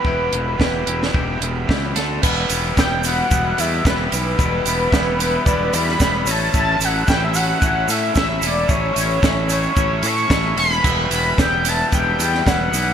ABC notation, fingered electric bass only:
X:1
M:4/4
L:1/8
Q:1/4=111
K:Edor
V:1 name="Fingered electric bass" clef=bass
E,,, E,,, E,,, E,,, E,,, E,,, C,, D,, | E,,, E,,, E,,,2 E,,, E,, E,,, B,,, | E,,, E,,, E,,,2 E,,, E,, E,,, A,,, | A,,, A,,, A,,,2 A,,, A,, A,,, E,,, |
A,,, A,,, A,,,2 A,,, A,, A,,, E,,, | E,,, E,,, E,,,2 E,,, E,, E,,, B,,, |]